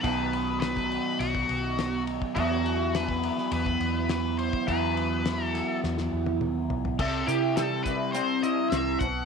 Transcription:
0.01 picked electric bass B1, clean electric guitar B2 D#3 F#3 B3, lead electric guitar B4, kick, ride
0.06 clean electric guitar D#4
0.33 ride
0.60 lead electric guitar B4, snare, ride
0.77 kick, snare
0.92 ride
1.19 picked electric bass B1, lead electric guitar F#4, ride
1.35 kick
1.49 picked electric bass B1, ride
1.78 snare, ride
2.07 ride
2.22 kick
2.35 picked electric bass E2, clean electric guitar E3 F#3 B3 E4, lead electric guitar F#4, kick, ride
2.66 ride
2.95 lead electric guitar B4, snare, ride
3.09 kick
3.23 ride
3.38 snare
3.51 picked electric bass E2, lead electric guitar B4, ride
3.66 kick
3.80 picked electric bass E2, ride
4.09 lead electric guitar B4, snare, ride
4.38 lead electric guitar C5, ride
4.53 kick
4.67 picked electric bass E2, clean electric guitar E3 F#3 B3 E4, lead electric guitar B4, kick, ride
4.97 ride
5.25 snare, ride
5.46 lead electric guitar A4
5.55 snare, ride
5.84 picked electric bass E2, snare
5.98 snare
6.12 picked electric bass E2
6.26 high tom
6.41 picked electric bass D#2, mid tom
6.70 picked electric bass B1, floor tom
6.85 floor tom
6.99 picked electric bass C2, clean electric guitar C3, lead electric guitar A4, kick, crash
7.27 picked electric bass C3, clean electric guitar E4, lead electric guitar G4, closed hi-hat
7.56 clean electric guitar G3, lead electric guitar A4, snare, closed hi-hat
7.84 clean electric guitar C3, lead electric guitar B4, kick, closed hi-hat
8.12 clean electric guitar C4, lead electric guitar C5, closed hi-hat
8.43 clean electric guitar E4, lead electric guitar D#5, closed hi-hat
8.70 picked electric bass C2, clean electric guitar C4, lead electric guitar E5, snare, closed hi-hat
8.99 picked electric bass B1, clean electric guitar B2, lead electric guitar F#5, kick, closed hi-hat

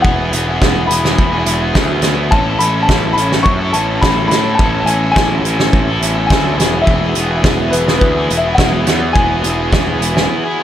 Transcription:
0.02 picked electric bass E1, distorted electric guitar B3 E4, upright piano F#5, kick
0.06 distorted electric guitar G#4
0.32 picked electric bass E1, distorted electric guitar B3 E4 G#4, closed hi-hat
0.47 distorted electric guitar E4 G#4
0.62 picked electric bass E1, distorted electric guitar B3 E4 G#4, kick, snare
0.87 picked electric bass E1, distorted electric guitar B3 E4, upright piano B5, closed hi-hat
0.92 distorted electric guitar G#4
1.04 distorted electric guitar E4 G#4, snare
1.19 picked electric bass E1, kick
1.32 distorted electric guitar E4 G#4
1.45 picked electric bass E1, distorted electric guitar B3 E4 G#4, closed hi-hat
1.60 distorted electric guitar E4 G#4
1.74 picked electric bass D2, distorted electric guitar B3 E4 G#4, kick, snare
1.88 distorted electric guitar E4 G#4
2.02 picked electric bass D2, distorted electric guitar B3 E4 G#4, snare, closed hi-hat
2.31 picked electric bass A1, analog synth pad A3 B3 C#4, distorted electric guitar C#4 E4 A4, upright piano A5, kick
2.59 picked electric bass A1, distorted electric guitar C#4 E4, upright piano B5, closed hi-hat
2.63 distorted electric guitar A4
2.76 distorted electric guitar E4 A4
2.83 upright piano A5
2.88 picked electric bass A1, distorted electric guitar C#4 E4 A4, kick, snare
3.13 picked electric bass A1, upright piano B5
3.18 distorted electric guitar C#4 E4 A4, closed hi-hat
3.32 distorted electric guitar E4 A4, snare
3.43 picked electric bass F#2, upright piano C#6, kick
3.61 distorted electric guitar E4 A4
3.73 picked electric bass A1, distorted electric guitar C#4 E4 A4, upright piano A5, closed hi-hat
3.88 distorted electric guitar E4 A4
4.01 picked electric bass A1, distorted electric guitar C#4 E4 A4, upright piano B5, kick, snare
4.17 distorted electric guitar E4 A4
4.28 picked electric bass A2, distorted electric guitar C#4, upright piano B5, snare, closed hi-hat
4.32 distorted electric guitar E4 A4
4.55 picked electric bass A1, upright piano A5
4.59 distorted electric guitar C#4 E4 A4, kick
4.85 picked electric bass A1, distorted electric guitar C#4, upright piano G#5, closed hi-hat
4.89 distorted electric guitar E4 A4
5.03 distorted electric guitar E4 A4
5.12 upright piano G#5
5.16 picked electric bass A1, distorted electric guitar C#4 E4 A4, kick, snare
5.42 picked electric bass A1, distorted electric guitar C#4, closed hi-hat
5.46 distorted electric guitar E4 A4
5.59 distorted electric guitar E4 A4, snare
5.73 picked electric bass A1, kick
5.87 distorted electric guitar E4 A4
6.00 picked electric bass A1, distorted electric guitar C#4 E4 A4, closed hi-hat
6.14 distorted electric guitar E4 A4
6.27 distorted electric guitar C#4, upright piano G#5, kick
6.31 picked electric bass D2, distorted electric guitar E4 A4, snare
6.44 distorted electric guitar E4 A4
6.56 picked electric bass E1, analog synth pad E3 F#4 G#4, distorted electric guitar B3 E4 G#4, closed hi-hat
6.60 snare
6.82 distorted electric guitar B3, upright piano E5
6.86 picked electric bass E1, distorted electric guitar E4 G#4, kick
7.15 picked electric bass E1, distorted electric guitar B3 E4 G#4, closed hi-hat
7.30 distorted electric guitar E4 G#4
7.44 picked electric bass E1, distorted electric guitar B3 E4 G#4, kick, snare
7.71 picked electric bass E1, distorted electric guitar B3 E4 G#4, upright piano B4, closed hi-hat
7.86 distorted electric guitar E4 G#4, snare
7.99 picked electric bass D2, upright piano B4, kick
8.15 distorted electric guitar E4 G#4
8.30 picked electric bass E1, distorted electric guitar B3 E4 G#4, closed hi-hat
8.38 upright piano E5
8.44 distorted electric guitar E4 G#4
8.55 picked electric bass E1, distorted electric guitar B3 E4, upright piano F#5, kick
8.59 distorted electric guitar G#4, snare
8.70 distorted electric guitar E4 G#4
8.85 picked electric bass E2, distorted electric guitar B3 E4 G#4, snare, closed hi-hat
9.13 picked electric bass E1, distorted electric guitar B3 E4 G#4, upright piano G#5, kick
9.42 picked electric bass E1, distorted electric guitar B3 E4 G#4, closed hi-hat
9.57 distorted electric guitar E4 G#4
9.71 picked electric bass E1, distorted electric guitar B3 E4 G#4, kick, snare
9.99 picked electric bass E1, distorted electric guitar B3 E4 G#4, closed hi-hat
10.15 distorted electric guitar E4 G#4, snare
10.43 distorted electric guitar E4 G#4
10.58 distorted electric guitar B3 E4 G#4

